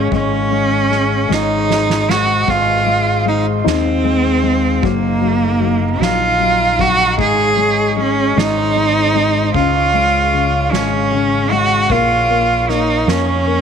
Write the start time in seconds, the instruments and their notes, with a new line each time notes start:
Already playing: upright piano C#3 G#3, glass harmonica G#4 C#6
0.11 fingered electric bass G#1, upright piano G#3, cello C#4, glass harmonica C#5 F5, kick, ride
0.51 upright piano G#3, ride
0.91 upright piano G#3, snare, ride
1.29 fingered electric bass G#1, upright piano G#3, cello D#4, glass harmonica C5 D#5 C6, snare
1.69 upright piano G#3, snare
1.90 snare
2.09 upright piano G#3, cello F#4, snare
2.47 fingered electric bass G#1, upright piano G#3, cello F4, kick, crash
2.86 upright piano G#3, ride
3.26 upright piano G#3, cello D#4
3.64 fingered electric bass D#2, cello C4, upright piano D#4, glass harmonica F5, snare
4.04 upright piano G#3, ride
4.43 upright piano G#3, ride
4.82 fingered electric bass F#1, upright piano F#3, cello A#3, glass harmonica D#4 D#5 F5 A#5, kick
5.21 upright piano F#3, ride
5.60 upright piano F#3
6.00 fingered electric bass A#1, upright piano F#3, cello F4, snare, ride
6.38 upright piano F#3, ride
6.78 upright piano F#3, cello F#4, kick
7.18 fingered electric bass G#1, upright piano G#3, glass harmonica G#4 C#5 D#5 C#6, cello G#4, kick, ride
7.57 upright piano G#3, ride
7.97 upright piano G#3, cello C#4
8.35 fingered electric bass G#1, upright piano G#3, cello D#4, glass harmonica G#4 C5 D#5 C6, snare, ride
8.76 upright piano G#3
9.15 upright piano G#3
9.54 fingered electric bass C#2, upright piano C#3, cello F4, glass harmonica C#5 F5 C#6, kick, ride
9.93 upright piano G#3, ride
10.33 upright piano C#3
10.72 fingered electric bass G#1, upright piano G#3, cello C#4, snare
11.12 upright piano C#3, ride
11.51 upright piano G#3, cello F#4, ride
11.90 fingered electric bass A#1, upright piano A#3, cello F4, glass harmonica A#4, kick, ride
12.29 upright piano A#3, ride
12.69 upright piano A#3, cello D#4, snare, ride
13.07 fingered electric bass F2, upright piano A#3, cello C#4, snare, ride
13.47 upright piano A#3, ride